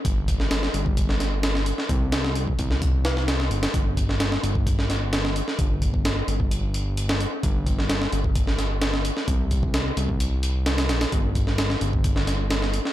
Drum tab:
HH |x-x-x-x-x-x-x-x-|x-x-x-x-x-x-x-xx|x-x-x-x-x-x-x-x-|x-x-x-x-x-x-x-x-|
SD |---ooo---oo-oo-o|--oo---o--oooo-o|---ooo---oo-oo-o|----o--------o--|
BD |o-o----oo-------|o----oo-o-------|o-o----oo-------|o-oo---o--------|

HH |x-x-x-x-x-x-x-x-|x-x-x-x-x-x-xxxx|x-x-x-x-x-x-x-x-|
SD |---ooo---oo-oo-o|----o-------oooo|---ooo---oo-oo-o|
BD |o-o----oo-------|o-oo---o--------|o-o----oo-------|